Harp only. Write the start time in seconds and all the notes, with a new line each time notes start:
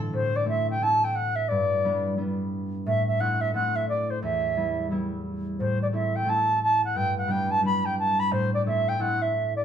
Already playing: A2 C4 D4 E4
0.00 E3
0.13 A2
0.45 A3 C4 E4
0.81 A3 C4 E4
1.51 G2
1.84 G3 B3 D4
2.17 G3 B3 D4
2.86 A2
3.20 A3 C4 E4
3.54 A3 C4 E4
4.22 E2
4.56 G3 B3 E4
4.91 G3 B3 E4
5.60 A2
5.93 A3 C4 E4
6.24 A3 C4
6.29 E4
6.95 G2
7.27 G3 B3 D4
7.62 G3 B3 D4
8.31 A2
8.66 A3 C4 E4
8.99 A3 C4 E4